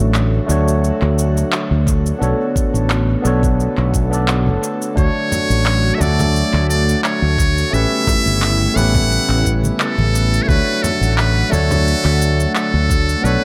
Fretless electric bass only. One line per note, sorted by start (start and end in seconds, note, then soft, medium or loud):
0.00 0.39 A1 medium
0.49 0.90 D2 medium
1.02 1.42 D2 medium
1.71 2.11 D2 medium
2.21 2.32 B1 medium
2.74 3.14 A1 medium
3.25 3.66 B1 medium
3.78 4.48 B1 medium
4.46 4.56 F#1 medium
4.97 5.08 D2 medium
5.50 5.90 A1 medium
6.00 6.42 D2 medium
6.53 6.94 D2 loud
7.22 7.63 D2 medium
7.73 7.84 A1 medium
8.26 8.66 G1 medium
8.76 9.17 A1 medium
9.29 9.70 A1 medium
9.98 10.39 A1 medium
10.49 10.60 D2 medium
11.01 11.42 A1 medium
11.52 11.93 D2 medium
12.05 12.45 D2 loud
12.74 13.14 D2 medium
13.24 13.35 B1 medium